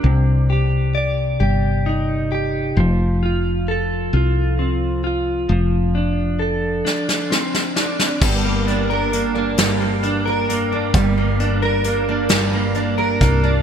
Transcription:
<<
  \new Staff \with { instrumentName = "Clean electric guitar" } { \time 6/8 \key g \minor \tempo 4. = 44 c8 g'8 d''8 g'8 ees'8 g'8 | f8 f'8 a'8 f'8 c'8 f'8 | f8 d'8 a'8 d'8 c'8 d'8 | g,16 bes16 d'16 bes'16 bes16 d'16 g,16 bes16 d'16 bes'16 bes16 d'16 |
g,16 bes16 d'16 bes'16 bes16 d'16 g,16 bes16 d'16 bes'16 bes16 d'16 | }
  \new Staff \with { instrumentName = "Steel-string acoustic guitar" } { \time 6/8 \key g \minor r2. | r2. | r2. | g16 bes16 d'16 bes'16 d'16 bes16 g16 bes16 d'16 bes'16 d'16 bes16 |
g16 bes16 d'16 bes'16 d'16 bes16 g16 bes16 d'16 bes'16 d'16 bes16 | }
  \new Staff \with { instrumentName = "Fretless electric bass" } { \clef bass \time 6/8 \key g \minor c,4. g,,4. | f,,4. c,4. | f,,4. r4. | g,,2~ g,,8 f,,8 |
g,,2~ g,,8 c,8 | }
  \new DrumStaff \with { instrumentName = "Drums" } \drummode { \time 6/8 r4. r4. | r4. r4. | r4. sn16 sn16 sn16 sn16 sn16 sn16 | <cymc bd>8 hh8 hh8 <hh sn>8 hh8 hh8 |
<hh bd>8 hh8 hh8 <hh sn>8 hh8 <hh bd>8 | }
>>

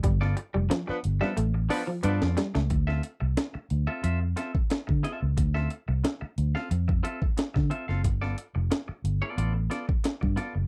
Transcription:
<<
  \new Staff \with { instrumentName = "Clean electric guitar" } { \time 4/4 \key d \dorian \tempo 4 = 90 r16 <b f' a' d''>16 r4 r16 <b f' a' e''>16 r8 <b f' a' d''>16 r16 <b f' a' d''>8 r8 | r16 <c' f' a' e''>16 r4 r16 <c' f' a' e''>16 <c' f' a' e''>16 r16 <c' f' a' e''>16 r8. <c' f' a' e''>16 r16 | r16 <c' f' a' e''>16 r4 r16 <c' f' a' f''>16 r8 <c' f' a' e''>16 r8. <c' f' a' e''>16 <c' f' a' f''>16 | r16 <b f' a' d''>16 r4 r16 <b f' a' d''>16 <b f' a' d''>16 r16 <b f' a' d''>16 r8. <b f' a' d''>16 r16 | }
  \new Staff \with { instrumentName = "Horn section" } { \time 4/4 \key d \dorian r4 r16 <f b d' b'>16 r16 <f b d' b'>16 r8 <f b d' b'>16 r16 <f b d' b'>8 r8 | r1 | r1 | r1 | }
  \new Staff \with { instrumentName = "Clean electric guitar" } { \clef bass \time 4/4 \key d \dorian g16 r8 g16 f16 r8 g16 a16 r8 f16 r8 g16 a16 | r1 | r1 | r1 | }
  \new Staff \with { instrumentName = "Fingered electric bass" } { \clef bass \time 4/4 \key d \dorian g,,8 r16 f,,16 r8 g,,16 r16 a,,8 r8 g,16 f,16 r16 cis,16 | d,8 r16 c,16 r8 d,16 r16 f,8 r8. d16 r16 cis,16 | d,8 r16 c,16 r8 d,16 r16 f,8 r8. d16 r16 fis,,16 | g,,8 r16 f,,16 r8 g,,16 r16 a,,8 r8. g,16 r16 fis,,16 | }
  \new DrumStaff \with { instrumentName = "Drums" } \drummode { \time 4/4 <hh bd>16 sn16 hh8 <hh sn>8 hh16 sn16 hh8 hho8 hh16 sn16 <hh sn>16 sn16 | <hh bd>16 sn16 hh8 <hh sn>8 hh8 hh8 <hh sn>16 bd16 <hh sn>16 bd16 <hh sn>8 | <hh bd>16 sn16 hh8 <hh sn>8 hh16 sn16 hh16 bd16 hh16 bd16 <hh sn>16 <bd sn>16 hh16 sn16 | <hh bd>16 sn16 hh8 <hh sn>8 hh8 hh8 <hh sn>16 bd16 <hh sn>16 bd16 <hh sn>8 | }
>>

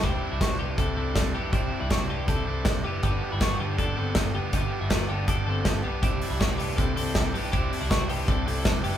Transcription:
<<
  \new Staff \with { instrumentName = "Clean electric guitar" } { \time 4/4 \key c \lydian \tempo 4 = 160 <c' g'>8. <g e'>16 <c' fis'>8 <b g'>8 <c' a'>8 <c' a'>4 <b g'>8 | <c' g'>8. <g e'>16 <c' fis'>8 <b g'>8 <c' a'>8 <c' a'>4 <b g'>8 | <b g'>8. <g e'>16 <b fis'>8 <b g'>8 <d' a'>8 <c' a'>4 <b g'>8 | <b g'>8. <g e'>16 <b fis'>8 <b g'>8 <d' a'>8 <c' a'>4 <b g'>8 |
<c' g'>8. <g e'>16 <c' fis'>8 <b g'>8 <c' a'>8 <c' a'>4 <b g'>8 | <c' g'>8. <g e'>16 <c' fis'>8 <b g'>8 <c' a'>8 <c' a'>4 <b g'>8 | }
  \new Staff \with { instrumentName = "Overdriven electric guitar" } { \time 4/4 \key c \lydian <c g d' e' g'>8 <d' e' g'>8 <c g d' e' g'>4 <g d' e' g'>8 <d' e' g'>8 <c g d' e' g'>8 <d' e' g'>8 | <c g d' e' g'>8 <d' e' g'>8 <c g d' e' g'>4 <g d' e' g'>8 <d' e' g'>8 <c g d' e' g'>8 <d' e' g'>8 | <g, d g b d' g'>8 <g b d' g'>8 <g, d g b d' g'>4 <g b d' g'>8 <g b d' g'>8 <g, d g b d' g'>8 <g b d' g'>8 | <g, d g b d' g'>8 <g b d' g'>8 <g, d g b d' g'>4 <g b d' g'>8 <g b d' g'>8 <g, d g b d' g'>8 <g b d' g'>8 |
<c g d' e' g'>8 <d' e' g'>8 <c g d' e' g'>4 <g d' e' g'>8 <d' e' g'>8 <c g d' e' g'>8 <d' e' g'>8 | <c g d' e' g'>8 <d' e' g'>8 <c g d' e' g'>4 <g d' e' g'>8 <d' e' g'>8 <c g d' e' g'>8 <d' e' g'>8 | }
  \new Staff \with { instrumentName = "Picked electric bass" } { \clef bass \time 4/4 \key c \lydian c,8 r16 c,16 r8 c,8 c,8 c,8 c,8 b,,8 | c,8 r16 c,16 c,8 c,8 c,8 c,8 c,8 fis,,8 | g,,8 r16 g,,16 r8 g,,8 g,,8 g,,8 g,,8 fis,,8 | g,,8 r16 g,,16 r8 g,,8 g,,8 g,,8 r8 b,,8 |
c,8 r16 c,16 c,8 c,8 c,8 c,8 c,8 b,,8 | c,8 r16 c,16 c,8 c,8 c,8 c,8 c,8 fis,,8 | }
  \new DrumStaff \with { instrumentName = "Drums" } \drummode { \time 4/4 <hh bd>4 <hh bd sn>4 <hh bd>4 <hh bd sn>4 | <hh bd>4 <hh bd sn>4 <hh bd>4 <hh bd sn>4 | <hh bd>4 <hh bd sn>4 <hh bd>4 <hh bd sn>4 | <hh bd>4 <hh bd sn>4 <hh bd>4 <hh bd sn>4 |
<hh bd>8 hho8 <hh bd sn>8 hho8 <hh bd>8 hho8 <hh bd sn>8 hho8 | <hh bd>8 hho8 <hh bd sn>8 hho8 <hh bd>8 hho8 <hh bd sn>8 hho8 | }
>>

